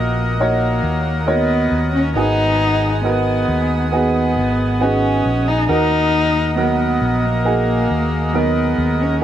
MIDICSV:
0, 0, Header, 1, 5, 480
1, 0, Start_track
1, 0, Tempo, 882353
1, 1179, Time_signature, 4, 2, 24, 8
1, 5026, End_track
2, 0, Start_track
2, 0, Title_t, "Accordion"
2, 0, Program_c, 0, 21
2, 0, Note_on_c, 0, 70, 59
2, 0, Note_on_c, 0, 75, 53
2, 0, Note_on_c, 0, 78, 52
2, 0, Note_on_c, 0, 87, 65
2, 1163, Note_off_c, 0, 75, 0
2, 1165, Note_off_c, 0, 70, 0
2, 1180, Note_on_c, 0, 80, 53
2, 1181, Note_on_c, 0, 59, 63
2, 3080, Note_off_c, 0, 80, 0
2, 3081, Note_off_c, 0, 59, 0
2, 3100, Note_on_c, 0, 70, 60
2, 3102, Note_on_c, 0, 75, 57
2, 5000, Note_off_c, 0, 70, 0
2, 5002, Note_off_c, 0, 75, 0
2, 5026, Note_off_c, 0, 78, 0
2, 5026, Note_off_c, 0, 87, 0
2, 5026, End_track
3, 0, Start_track
3, 0, Title_t, "Upright piano"
3, 0, Program_c, 1, 0
3, 0, Control_c, 1, 64, 127
3, 0, Note_on_c, 1, 46, 50
3, 0, Note_on_c, 1, 58, 62
3, 0, Note_on_c, 1, 63, 52
3, 0, Note_on_c, 1, 66, 56
3, 0, Note_on_c, 1, 70, 65
3, 193, Note_off_c, 1, 58, 0
3, 194, Note_off_c, 1, 63, 0
3, 194, Note_off_c, 1, 66, 0
3, 196, Note_off_c, 1, 70, 0
3, 216, Note_on_c, 1, 58, 61
3, 218, Note_on_c, 1, 63, 54
3, 220, Note_on_c, 1, 66, 54
3, 222, Note_on_c, 1, 73, 62
3, 674, Note_off_c, 1, 58, 0
3, 675, Note_off_c, 1, 63, 0
3, 676, Note_off_c, 1, 66, 0
3, 677, Note_off_c, 1, 73, 0
3, 689, Note_on_c, 1, 70, 62
3, 692, Note_on_c, 1, 63, 55
3, 695, Note_on_c, 1, 66, 53
3, 695, Note_on_c, 1, 73, 65
3, 1150, Note_off_c, 1, 70, 0
3, 1152, Note_off_c, 1, 63, 0
3, 1153, Note_off_c, 1, 66, 0
3, 1153, Note_off_c, 1, 73, 0
3, 1174, Note_on_c, 1, 63, 55
3, 1175, Note_on_c, 1, 44, 52
3, 1175, Note_on_c, 1, 59, 56
3, 1176, Note_on_c, 1, 66, 53
3, 1177, Note_on_c, 1, 51, 52
3, 1180, Note_on_c, 1, 68, 62
3, 1186, Control_c, 1, 64, 0
3, 1189, Note_off_c, 1, 46, 0
3, 1291, Control_c, 1, 64, 127
3, 1633, Note_off_c, 1, 59, 0
3, 1633, Note_off_c, 1, 63, 0
3, 1634, Note_off_c, 1, 66, 0
3, 1635, Note_off_c, 1, 68, 0
3, 1650, Note_on_c, 1, 63, 59
3, 1651, Note_on_c, 1, 59, 62
3, 1654, Note_on_c, 1, 66, 58
3, 1659, Note_on_c, 1, 70, 66
3, 1876, Note_off_c, 1, 44, 0
3, 1876, Note_off_c, 1, 51, 0
3, 2111, Note_off_c, 1, 59, 0
3, 2111, Note_off_c, 1, 63, 0
3, 2113, Note_off_c, 1, 66, 0
3, 2115, Note_off_c, 1, 70, 0
3, 2130, Note_on_c, 1, 59, 67
3, 2133, Note_on_c, 1, 63, 59
3, 2134, Note_on_c, 1, 66, 61
3, 2140, Note_on_c, 1, 68, 70
3, 2591, Note_off_c, 1, 59, 0
3, 2592, Note_off_c, 1, 63, 0
3, 2593, Note_off_c, 1, 66, 0
3, 2595, Note_off_c, 1, 68, 0
3, 2609, Note_on_c, 1, 59, 68
3, 2614, Note_on_c, 1, 66, 61
3, 2615, Note_on_c, 1, 63, 61
3, 2619, Note_on_c, 1, 68, 70
3, 3070, Note_off_c, 1, 59, 0
3, 3073, Note_off_c, 1, 63, 0
3, 3073, Note_off_c, 1, 66, 0
3, 3075, Note_off_c, 1, 68, 0
3, 3094, Note_on_c, 1, 58, 65
3, 3094, Note_on_c, 1, 66, 56
3, 3095, Note_on_c, 1, 63, 54
3, 3098, Note_on_c, 1, 70, 69
3, 3107, Control_c, 1, 64, 0
3, 3186, Control_c, 1, 64, 127
3, 3553, Note_off_c, 1, 58, 0
3, 3553, Note_off_c, 1, 63, 0
3, 3553, Note_off_c, 1, 66, 0
3, 3555, Note_off_c, 1, 70, 0
3, 3570, Note_on_c, 1, 54, 64
3, 3574, Note_on_c, 1, 63, 57
3, 3577, Note_on_c, 1, 66, 60
3, 3578, Note_on_c, 1, 70, 70
3, 4031, Note_off_c, 1, 54, 0
3, 4033, Note_off_c, 1, 63, 0
3, 4034, Note_off_c, 1, 66, 0
3, 4035, Note_off_c, 1, 70, 0
3, 4051, Note_on_c, 1, 58, 65
3, 4053, Note_on_c, 1, 63, 58
3, 4056, Note_on_c, 1, 66, 58
3, 4056, Note_on_c, 1, 68, 70
3, 4511, Note_off_c, 1, 58, 0
3, 4512, Note_off_c, 1, 63, 0
3, 4514, Note_off_c, 1, 66, 0
3, 4514, Note_off_c, 1, 68, 0
3, 4531, Note_on_c, 1, 54, 67
3, 4534, Note_on_c, 1, 63, 61
3, 4538, Note_on_c, 1, 66, 57
3, 4542, Note_on_c, 1, 70, 72
3, 4991, Note_off_c, 1, 54, 0
3, 4993, Note_off_c, 1, 63, 0
3, 4995, Note_off_c, 1, 66, 0
3, 4997, Note_off_c, 1, 70, 0
3, 5009, Note_on_c, 1, 59, 62
3, 5026, Note_off_c, 1, 59, 0
3, 5026, End_track
4, 0, Start_track
4, 0, Title_t, "Cello"
4, 0, Program_c, 2, 42
4, 0, Note_on_c, 2, 58, 70
4, 214, Note_off_c, 2, 58, 0
4, 217, Note_on_c, 2, 58, 75
4, 677, Note_off_c, 2, 58, 0
4, 709, Note_on_c, 2, 59, 82
4, 1043, Note_off_c, 2, 59, 0
4, 1061, Note_on_c, 2, 61, 83
4, 1172, Note_off_c, 2, 61, 0
4, 1180, Note_on_c, 2, 63, 93
4, 1638, Note_off_c, 2, 63, 0
4, 1659, Note_on_c, 2, 59, 77
4, 2117, Note_off_c, 2, 59, 0
4, 2142, Note_on_c, 2, 59, 82
4, 2627, Note_on_c, 2, 61, 85
4, 2635, Note_off_c, 2, 59, 0
4, 2981, Note_on_c, 2, 63, 84
4, 2990, Note_off_c, 2, 61, 0
4, 3096, Note_off_c, 2, 63, 0
4, 3099, Note_on_c, 2, 63, 98
4, 3557, Note_off_c, 2, 63, 0
4, 3583, Note_on_c, 2, 59, 76
4, 3947, Note_on_c, 2, 58, 83
4, 3955, Note_off_c, 2, 59, 0
4, 4544, Note_on_c, 2, 59, 80
4, 4552, Note_off_c, 2, 58, 0
4, 4908, Note_on_c, 2, 61, 78
4, 4916, Note_off_c, 2, 59, 0
4, 5026, Note_off_c, 2, 61, 0
4, 5026, End_track
5, 0, Start_track
5, 0, Title_t, "Fretless electric bass"
5, 0, Program_c, 3, 35
5, 0, Note_on_c, 3, 34, 67
5, 435, Note_off_c, 3, 34, 0
5, 453, Note_on_c, 3, 39, 76
5, 914, Note_off_c, 3, 39, 0
5, 934, Note_on_c, 3, 39, 74
5, 1160, Note_off_c, 3, 39, 0
5, 1170, Note_on_c, 3, 32, 93
5, 1873, Note_off_c, 3, 32, 0
5, 1895, Note_on_c, 3, 39, 72
5, 2374, Note_on_c, 3, 32, 75
5, 2382, Note_off_c, 3, 39, 0
5, 2835, Note_off_c, 3, 32, 0
5, 2859, Note_on_c, 3, 34, 73
5, 3083, Note_off_c, 3, 34, 0
5, 3097, Note_on_c, 3, 39, 88
5, 3796, Note_off_c, 3, 39, 0
5, 3816, Note_on_c, 3, 34, 81
5, 4276, Note_off_c, 3, 34, 0
5, 4301, Note_on_c, 3, 39, 78
5, 4758, Note_off_c, 3, 39, 0
5, 4778, Note_on_c, 3, 39, 83
5, 5002, Note_off_c, 3, 39, 0
5, 5026, End_track
0, 0, End_of_file